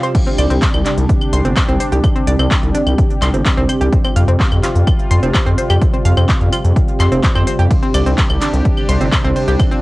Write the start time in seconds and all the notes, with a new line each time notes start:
Already playing: C3 G3 F4 G4
0.03 C5, closed hi-hat
0.15 D4, kick, closed hi-hat, crash
0.27 C4, closed hi-hat
0.38 C2 D5, closed hi-hat, claves
0.50 C2 C4, closed hi-hat
0.62 kick, clap, closed hi-hat
0.74 C2, closed hi-hat, claves
0.86 D4, clap, closed hi-hat
0.98 C2, closed hi-hat
1.09 kick, closed hi-hat
1.21 closed hi-hat, claves
1.33 C2 C6, closed hi-hat
1.45 G1 C4, closed hi-hat
1.56 C4, kick, clap, closed hi-hat, claves
1.68 C2 C4, closed hi-hat
1.80 C5, closed hi-hat
1.92 C2 G4, closed hi-hat
2.04 kick, closed hi-hat, claves
2.16 C4, closed hi-hat
2.27 C2 D5, closed hi-hat
2.39 C2 C4, closed hi-hat, claves
2.51 kick, clap, closed hi-hat
2.63 C2, closed hi-hat
2.74 D4, closed hi-hat
2.86 C2, closed hi-hat, claves
2.98 kick, closed hi-hat
3.10 closed hi-hat
3.22 C2 C6, clap, closed hi-hat, claves
3.34 G1 C4, closed hi-hat
3.45 C4, kick, clap, closed hi-hat
3.57 C2 C4, closed hi-hat
3.69 C5, closed hi-hat, claves
3.81 C2 G4, closed hi-hat
3.93 C3 G3 F4, kick, closed hi-hat
4.05 C4, closed hi-hat, claves
4.16 F2 F5, closed hi-hat
4.28 F2 C4, closed hi-hat
4.40 kick, clap, closed hi-hat
4.52 F2, closed hi-hat, claves
4.63 F4, clap, closed hi-hat
4.75 F2, closed hi-hat
4.87 kick, closed hi-hat, claves
4.99 closed hi-hat
5.11 F2 C6, closed hi-hat
5.23 F1 C4, closed hi-hat
5.34 C4, kick, clap, closed hi-hat, claves
5.46 F2 C4, closed hi-hat
5.58 C5, closed hi-hat
5.70 F2 G4, closed hi-hat, claves
5.82 kick, closed hi-hat
5.94 C4, closed hi-hat
6.05 F2 F5, closed hi-hat
6.17 F2 C4, closed hi-hat, claves
6.29 kick, clap, closed hi-hat
6.41 F2, closed hi-hat
6.53 F4, closed hi-hat, claves
6.64 F2, closed hi-hat
6.76 kick, closed hi-hat
6.88 closed hi-hat
7.00 F2 C6, clap, closed hi-hat, claves
7.12 F1 C4, closed hi-hat
7.23 C4, kick, clap, closed hi-hat
7.35 F2 C4, closed hi-hat, claves
7.47 C5, closed hi-hat
7.59 F2 G4, closed hi-hat
7.71 D4 G4, kick, closed hi-hat, ride
7.83 C4, closed hi-hat
7.94 C2 D5, closed hi-hat, ride, claves
8.06 C2 C4, closed hi-hat
8.18 kick, clap, closed hi-hat, ride
8.30 C2, closed hi-hat, claves
8.41 D4, clap, closed hi-hat, ride
8.53 C2, closed hi-hat
8.65 kick, closed hi-hat, ride
8.77 closed hi-hat, claves
8.89 C2 C6, closed hi-hat, ride
9.01 G1 C4, closed hi-hat
9.12 C4, kick, clap, closed hi-hat, ride, claves
9.24 C2 C4, closed hi-hat
9.36 C5, closed hi-hat, ride
9.48 C2 G4, closed hi-hat
9.60 F4, kick, closed hi-hat, ride, claves
9.72 C4, closed hi-hat